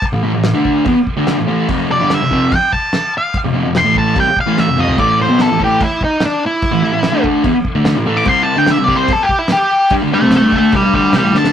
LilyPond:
<<
  \new Staff \with { instrumentName = "Lead electric guitar" } { \time 4/4 \key a \minor \tempo 4 = 146 r1 | r8 d''8 e''4 g''8 a''4 f''8 | r4 c'''8 a''8 g''8 f''8 e''8 dis''8 | d''8 c''8 a'8 g'8 e'8 dis'8 d'8 e'8~ |
e'4. r4. \tuplet 3/2 { r4 d'''8 } | \tuplet 3/2 { c'''8 a''8 g''8 e''8 d''8 c''8 a'8 g'8 e'8 } g'4 | r8 <e'' a''>8 <e'' a''>8 <e'' a''>8 <d'' g''>8 <d'' g''>8 <d'' g''>8 a''8 | }
  \new Staff \with { instrumentName = "Distorted electric guitar" } { \clef bass \time 4/4 \key a \minor r16 <a, e>16 <a, e>16 <a, e>8 <d a d'>8. <e b>16 r8 <d a d'>8 <a, e>16 <a, e a>8 | <f, c f>8. <g, d g>8 <f, c>16 <f, c f>8 r2 | r16 <f, c>16 <f, c>16 <f, c>8 <a, e a>8. <c g>16 r8 <a, e a>8 <f, c>16 <f, c f>8 | <a, e a>8. <b, fis b>8 <a, e>16 <a, e a>8 r2 |
r16 <a, e>16 <a, e>16 <a, e>8 <d a d'>8. <e b>16 r8 <d a d'>8 <a, e>16 <a, e a>8 | <c g c'>8. <d a d'>8 <c g>16 <c g c'>8 r2 | <g d'>16 <d a>16 <g d'>16 <c g c'>8 <g d'>16 <d a d'>8 <c g>16 <g d'>16 <d a d'>8 <c g>16 <a, e>16 <d a d'>8 | }
  \new DrumStaff \with { instrumentName = "Drums" } \drummode { \time 4/4 <cymc bd>4 <cymc sn>8 bd8 <cymc bd>8 bd8 <cymc sn>4 | <cymc bd>4 <cymc sn>8 bd8 <cymc bd>8 bd8 <cymc sn>4 | <cymc bd>4 <cymc sn>8 bd8 <cymc bd>8 bd8 sn8 toml16 tomfh16 | <cymc bd>4 <cymc sn>8 bd8 <cymc bd>8 bd8 <cymc sn>4 |
<cymc bd>4 <cymc sn>8 bd8 <cymc bd>8 bd8 <cymc sn>4 | <cymc bd>4 <cymc sn>8 bd8 <cymc bd>8 bd8 <cymc sn>4 | <cymc bd>4 <cymc sn>8 bd8 <cymc bd>8 bd8 <cymc sn>8 sn16 sn16 | }
>>